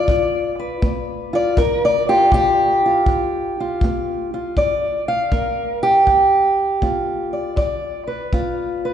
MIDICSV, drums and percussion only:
0, 0, Header, 1, 2, 480
1, 0, Start_track
1, 0, Tempo, 750000
1, 1008, Time_signature, 4, 2, 24, 8
1, 5718, End_track
2, 0, Start_track
2, 0, Title_t, "Drums"
2, 50, Note_on_c, 9, 36, 66
2, 114, Note_off_c, 9, 36, 0
2, 527, Note_on_c, 9, 36, 65
2, 591, Note_off_c, 9, 36, 0
2, 1005, Note_on_c, 9, 36, 71
2, 1069, Note_off_c, 9, 36, 0
2, 1483, Note_on_c, 9, 36, 73
2, 1547, Note_off_c, 9, 36, 0
2, 1961, Note_on_c, 9, 36, 67
2, 2025, Note_off_c, 9, 36, 0
2, 2441, Note_on_c, 9, 36, 68
2, 2505, Note_off_c, 9, 36, 0
2, 2922, Note_on_c, 9, 36, 58
2, 2986, Note_off_c, 9, 36, 0
2, 3403, Note_on_c, 9, 36, 66
2, 3467, Note_off_c, 9, 36, 0
2, 3884, Note_on_c, 9, 36, 60
2, 3948, Note_off_c, 9, 36, 0
2, 4365, Note_on_c, 9, 36, 58
2, 4429, Note_off_c, 9, 36, 0
2, 4845, Note_on_c, 9, 36, 63
2, 4909, Note_off_c, 9, 36, 0
2, 5328, Note_on_c, 9, 36, 65
2, 5392, Note_off_c, 9, 36, 0
2, 5718, End_track
0, 0, End_of_file